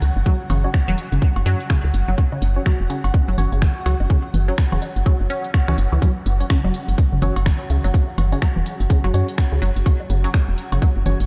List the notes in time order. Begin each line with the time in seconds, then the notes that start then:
Already playing: F#5
0.02 C#2, closed hi-hat
0.16 F#1
0.26 F#3, kick
0.50 F#1 C#3, closed hi-hat, cowbell, low conga
0.64 C#4 F#4 C#5, low woodblock
0.74 finger snap, kick
0.88 E1 F#3, low conga
0.98 closed hi-hat
1.12 F#1 C#3, closed hi-hat
1.22 kick
1.36 F#1, cowbell
1.46 F#2 F#3 C#4 F#4 C#5, closed hi-hat, low woodblock
1.60 closed hi-hat
1.70 C#3, finger snap, kick
1.84 C#2
1.94 F#1, closed hi-hat
2.08 F#1 F#3
2.18 kick, cowbell
2.32 C#3, low woodblock
2.42 F#1, closed hi-hat
2.56 C#4 F#4 C#5
2.66 F#3, finger snap, kick
2.80 E1
2.90 C#3, closed hi-hat
3.04 F#1, closed hi-hat, cowbell
3.14 kick, low woodblock
3.28 F#1 F#3
3.38 F#1 C#4 F#4 C#5, closed hi-hat, low conga
3.52 F#1 C#3, closed hi-hat
3.62 finger snap, kick, low conga
3.86 C#2 F#3, closed hi-hat, cowbell
4.00 F#1, low woodblock
4.10 C#3, kick
4.34 F#1, closed hi-hat, low conga
4.48 F#3 C#4 F#4 C#5
4.58 finger snap, kick
4.72 E1 C#3, cowbell, low conga
4.82 closed hi-hat, low woodblock
4.96 F#1, closed hi-hat
5.06 F#3, kick
5.20 F#1
5.30 C#4, closed hi-hat
5.44 closed hi-hat
5.54 finger snap, kick, cowbell
5.68 C#2 E3 C#4 F#4 C#5, finger snap, low conga, low woodblock
5.78 F#1, closed hi-hat
5.92 C#2 E3
6.02 F#3 F#4, kick, closed hi-hat
6.26 F#1, closed hi-hat
6.40 C#4 F#4 C#5, closed hi-hat
6.50 C#3, finger snap, kick, closed hi-hat, cowbell
6.64 E1 F#3, low woodblock
6.74 closed hi-hat
6.88 F#1, closed hi-hat
6.98 kick, closed hi-hat
7.12 F#1 C#3
7.22 F#1 F#3 C#4 F#4 C#5, closed hi-hat, low conga
7.36 F#1, closed hi-hat, cowbell
7.46 finger snap, kick, closed hi-hat, low conga, low woodblock
7.70 C#2 C#3, closed hi-hat
7.84 F#1 F#3, closed hi-hat
7.94 kick, closed hi-hat
8.18 F#1, closed hi-hat, cowbell, low conga
8.32 C#3 C#4 F#4 C#5, closed hi-hat, low woodblock
8.42 F#3, finger snap, kick, closed hi-hat
8.56 E1, low conga
8.66 closed hi-hat
8.80 F#1, closed hi-hat
8.90 C#3, kick, closed hi-hat
9.04 F#1 F#3, cowbell
9.14 F#2 C#4 F#4 C#5, closed hi-hat, low woodblock
9.28 closed hi-hat
9.38 finger snap, kick, closed hi-hat
9.52 C#2 C#3
9.62 F#1 F#3, closed hi-hat
9.76 F#1, closed hi-hat
9.86 kick, closed hi-hat, cowbell
10.00 low woodblock
10.10 F#1 C#3, closed hi-hat
10.24 F#3 C#4 F#4 C#5, closed hi-hat
10.34 finger snap, kick, closed hi-hat
10.48 E1
10.58 closed hi-hat
10.72 F#1 C#3, closed hi-hat, cowbell
10.82 F#3, kick, closed hi-hat, low woodblock
10.96 F#1
11.06 F#1 C#4 F#4 C#5, closed hi-hat, low conga
11.20 F#1, closed hi-hat